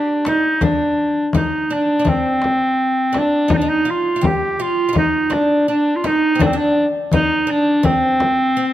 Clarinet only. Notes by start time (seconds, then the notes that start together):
Already playing: D4
0.29 D#4
0.63 D4
1.36 D#4
1.74 D4
2.09 C4
3.18 D4
3.53 D4 D#4
3.69 D#4
3.90 F4
4.26 G4
4.61 F4
4.98 D#4
5.33 D4
5.69 D4
5.96 F4
6.06 D#4
6.42 D4
6.46 C4
6.57 D4
7.13 D#4
7.51 D4
7.85 C4